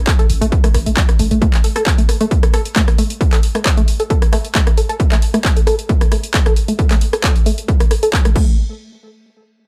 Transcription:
0.07 synth arpeggio sound A4, kick, clap, closed hi-hat
0.19 synth arpeggio sound A4, closed hi-hat
0.30 808-style bass A1, open hi-hat
0.41 808-style bass A1, synth arpeggio sound A3, closed hi-hat
0.52 kick, closed hi-hat
0.64 synth arpeggio sound A3, cross-stick, closed hi-hat
0.74 808-style bass A1, cross-stick, open hi-hat
0.86 808-style bass A1, synth arpeggio sound A3, closed hi-hat
0.97 synth arpeggio sound G3, kick, clap, closed hi-hat
1.09 cross-stick, closed hi-hat
1.19 808-style bass A1, synth arpeggio sound A3, open hi-hat
1.31 808-style bass A1, synth arpeggio sound A3, closed hi-hat
1.42 synth arpeggio sound A3, kick, closed hi-hat
1.54 clap, closed hi-hat
1.64 synth arpeggio sound A4, open hi-hat
1.76 synth arpeggio sound A4, cross-stick, closed hi-hat
1.86 kick, clap, closed hi-hat
1.98 synth arpeggio sound A3, closed hi-hat
2.09 cross-stick, open hi-hat
2.21 synth arpeggio sound A3, closed hi-hat
2.31 kick, closed hi-hat
2.43 synth arpeggio sound A4, cross-stick, closed hi-hat
2.54 synth arpeggio sound A4, cross-stick, open hi-hat
2.65 closed hi-hat
2.76 synth arpeggio sound A3, kick, clap, closed hi-hat
2.88 cross-stick, closed hi-hat
2.98 synth arpeggio sound A3, open hi-hat
3.10 closed hi-hat
3.21 synth arpeggio sound A4, kick, closed hi-hat
3.33 synth arpeggio sound A4, clap, closed hi-hat
3.43 open hi-hat
3.55 synth arpeggio sound A3, cross-stick, closed hi-hat
3.65 kick, clap, closed hi-hat
3.77 synth arpeggio sound A3, closed hi-hat
3.88 open hi-hat
4.00 synth arpeggio sound A4, closed hi-hat
4.10 synth arpeggio sound A4, kick, closed hi-hat
4.22 cross-stick, closed hi-hat
4.33 synth arpeggio sound A3, cross-stick, open hi-hat
4.45 closed hi-hat
4.55 synth arpeggio sound A3, kick, clap, closed hi-hat
4.67 cross-stick, closed hi-hat
4.77 synth arpeggio sound A4, open hi-hat
4.89 synth arpeggio sound A4, closed hi-hat
5.00 kick, closed hi-hat
5.12 synth arpeggio sound A3, clap, closed hi-hat
5.22 open hi-hat
5.34 synth arpeggio sound A3, cross-stick, closed hi-hat
5.45 kick, clap, closed hi-hat
5.56 synth arpeggio sound A4, closed hi-hat
5.67 synth arpeggio sound A4, cross-stick, open hi-hat
5.79 closed hi-hat
5.89 synth arpeggio sound A3, kick, closed hi-hat
6.01 cross-stick, closed hi-hat
6.12 synth arpeggio sound A3, cross-stick, open hi-hat
6.24 closed hi-hat
6.34 synth arpeggio sound A4, kick, clap, closed hi-hat
6.46 synth arpeggio sound A4, cross-stick, closed hi-hat
6.56 open hi-hat
6.68 synth arpeggio sound A3, closed hi-hat
6.79 kick, closed hi-hat
6.91 synth arpeggio sound A3, clap, closed hi-hat
7.01 open hi-hat
7.13 synth arpeggio sound A4, cross-stick, closed hi-hat
7.24 synth arpeggio sound A4, kick, clap, closed hi-hat
7.36 closed hi-hat
7.46 synth arpeggio sound A3, open hi-hat
7.58 closed hi-hat
7.68 synth arpeggio sound A3, kick, closed hi-hat
7.80 cross-stick, closed hi-hat
7.91 synth arpeggio sound A4, cross-stick, open hi-hat
8.03 synth arpeggio sound A4, closed hi-hat
8.13 kick, clap, closed hi-hat
8.25 synth arpeggio sound A3, cross-stick, closed hi-hat
8.36 synth arpeggio sound A3, kick, crash

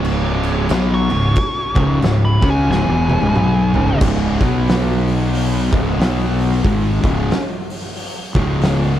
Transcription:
Already playing: fingered electric bass C#1, distorted electric guitar C#2 G#2 C#3
0.04 crash
0.43 crash
0.69 fingered electric bass B1, distorted electric guitar B2 F#3 B3, snare, crash
0.94 lead electric guitar C#6
1.10 fingered electric bass C#1, distorted electric guitar C#2 G#2, crash
1.36 kick, crash
1.75 fingered electric bass C#1, distorted electric guitar C#2 G#2 C#3, kick, crash
2.02 fingered electric bass C#1, distorted electric guitar C#2 G#2, snare, crash
2.25 lead electric guitar B5
2.42 fingered electric bass C#2, distorted electric guitar C#3 G#3 C#4, kick, crash
2.50 lead electric guitar G#5
2.70 fingered electric bass C#1, distorted electric guitar C#2 G#2, lead electric guitar G#5, snare
2.88 fingered electric bass E1, distorted electric guitar E2 B2 E3
3.09 high tom
3.22 fingered electric bass C#1, distorted electric guitar C#2 G#2, high tom
3.35 fingered electric bass B1, distorted electric guitar B2 F#3 B3, mid tom
3.74 fingered electric bass C#1, distorted electric guitar C#2 G#2 C#3, floor tom
3.88 floor tom
4.01 fingered electric bass C#1, distorted electric guitar C#2 G#2 C#3, kick, crash
4.40 fingered electric bass B1, distorted electric guitar B2 F#3 B3, kick, open hi-hat
4.68 snare, open hi-hat
5.08 open hi-hat
5.33 open hi-hat
5.72 fingered electric bass C#1, distorted electric guitar C#2 G#2 C#3, kick, open hi-hat
5.98 fingered electric bass B1, distorted electric guitar B2 F#3 B3, snare, open hi-hat
6.39 open hi-hat
6.64 fingered electric bass G#1, distorted electric guitar G#2 D#3 G#3, kick, open hi-hat
7.02 fingered electric bass C#1, distorted electric guitar C#2 G#2 C#3, kick, open hi-hat
7.30 snare, open hi-hat
7.70 open hi-hat
7.96 open hi-hat
8.35 fingered electric bass C#1, distorted electric guitar C#2 G#2 C#3, kick, open hi-hat
8.61 snare, open hi-hat

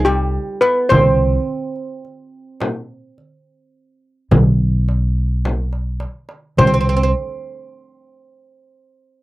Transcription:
Already playing: upright bass C2
0.05 oud G3, steel pan G4
0.34 darbuka ka
0.61 oud B3, steel pan B4
0.89 upright bass C2, oud C4, steel pan C5, darbuka dum, frame drum
1.76 darbuka ka
2.05 darbuka ka
2.60 darbuka tek, frame drum
3.18 darbuka ka
4.31 upright bass B1, darbuka dum, frame drum
4.89 darbuka tek
5.45 darbuka tek, frame drum
5.73 darbuka ka
6.00 darbuka tek
6.29 darbuka ka
6.57 upright bass C2, oud C4, steel pan C5, darbuka dum, frame drum
6.67 oud C4
6.74 oud C4
6.81 oud C4
6.89 oud C4
6.96 oud C4
7.03 oud C4

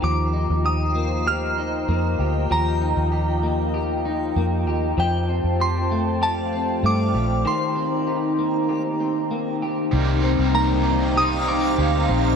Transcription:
Already playing: clean electric guitar A#3 D#4, ambient pad A#5
0.02 fingered electric bass D#2, clean electric guitar F3 G4, ambient pad F4 D#5 G5, synth bell D6
0.33 clean electric guitar D#4
0.50 fingered electric bass D#2
0.65 clean electric guitar G4, synth bell D#6
0.95 clean electric guitar A#3
1.27 clean electric guitar G4, synth bell F6
1.58 clean electric guitar D#4
1.89 fingered electric bass F2, clean electric guitar A#3
2.19 fingered electric bass D2, clean electric guitar G4
2.51 fingered electric bass D#2, clean electric guitar F3 G4, synth bell A#5
2.81 clean electric guitar D#4
2.97 fingered electric bass D#2
3.12 clean electric guitar G4
3.43 clean electric guitar A#3
3.74 clean electric guitar G4
4.05 clean electric guitar D#4
4.36 fingered electric bass F2, clean electric guitar A#3
4.67 fingered electric bass D#2, clean electric guitar G4
4.98 fingered electric bass F2, clean electric guitar F3 G4, ambient pad C5 A5, synth bell G5
5.29 clean electric guitar C4
5.44 fingered electric bass F2
5.60 clean electric guitar G4, synth bell C6
5.91 clean electric guitar A3
6.22 clean electric guitar G4, synth bell A5
6.53 clean electric guitar C4
6.83 fingered electric bass G2, clean electric guitar A3, synth bell D6
7.14 fingered electric bass A#1, clean electric guitar G4
7.44 clean electric guitar D#3 G4, ambient pad D#4 A#5, synth bell C6
7.76 clean electric guitar C4
8.07 clean electric guitar G4
8.39 clean electric guitar A#3
8.69 clean electric guitar G4
9.00 clean electric guitar C4
9.31 clean electric guitar A#3
9.62 clean electric guitar G4
9.92 fingered electric bass C2, overdriven electric guitar C3 G3 A#3, ambient pad D#4 C5 G5 A#5
9.97 overdriven electric guitar D#4
10.24 clean electric guitar C4
10.39 fingered electric bass C2
10.54 clean electric guitar A#3, synth bell A#5
10.85 clean electric guitar C4
11.16 overdriven electric guitar C3 G3 A#3 D#4, clean electric guitar G4, synth bell D#6
11.48 clean electric guitar C4, synth bell D6
11.77 fingered electric bass D2, overdriven electric guitar C3 G3 A#3 D#4, clean electric guitar G4
12.09 fingered electric bass A#1, clean electric guitar C4

